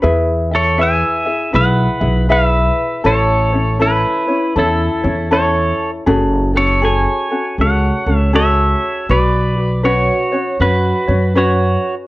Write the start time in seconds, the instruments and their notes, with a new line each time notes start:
0.02 upright bass E2, ukulele E4 G#4 B4 E5
0.51 ukulele E4 E5, pedal steel guitar A4
0.55 pedal steel guitar C#5
0.78 ukulele E4 G#4 B4 E5, pedal steel guitar E5
0.83 pedal steel guitar G#5
1.25 ukulele E4 G#4 E5
1.53 upright bass B1, ukulele E4 G#4 B4 E5, pedal steel guitar B4 F#5
2.00 upright bass B1, ukulele E4 G#4 E5
2.29 ukulele E4 G#4 B4 E5, pedal steel guitar B4 E5
3.04 upright bass A1, ukulele C#4 E4 A4 C#5, pedal steel guitar A4 C#5
3.53 ukulele C#4 E4 C#5
3.79 ukulele C#4 E4 A4 C#5, pedal steel guitar E4 B4
4.28 ukulele C#4 E4 C#5
4.56 upright bass E2, ukulele C#4 E4 A4 C#5, pedal steel guitar E4 A4
5.04 upright bass E2, ukulele C#4 E4 C#5
5.31 ukulele C#4 E4 A4 C#5, pedal steel guitar A4 C#5
6.06 upright bass F#1, ukulele C#4 F#4 G#4 A4
6.54 ukulele C#4 F#4 A4, pedal steel guitar A4 C#5
6.82 ukulele C#4 F#4 G#4 A4, pedal steel guitar C#5 G#5
7.30 ukulele C#4 F#4 A4
7.58 upright bass C#2, ukulele C#4 F#4 G#4 A4, pedal steel guitar C#5 F#5
8.06 upright bass C#2, ukulele C#4 F#4 A4
8.17 pedal steel guitar E5
8.33 ukulele C#4 F#4 G#4 A4, pedal steel guitar C#5 E5
9.09 upright bass B1, ukulele F#4 B4, pedal steel guitar B4 D5
9.58 ukulele F#4
9.83 ukulele C#4 F#4 B4 C#5, pedal steel guitar F#4 C#5
10.32 ukulele C#4 F#4 C#5
10.60 upright bass F#2, ukulele C#4 F#4 B4 C#5, pedal steel guitar F#4 B4
11.07 upright bass F#2, ukulele C#4 F#4 C#5
11.35 ukulele C#4 F#4 B4 C#5, pedal steel guitar F#4 C#5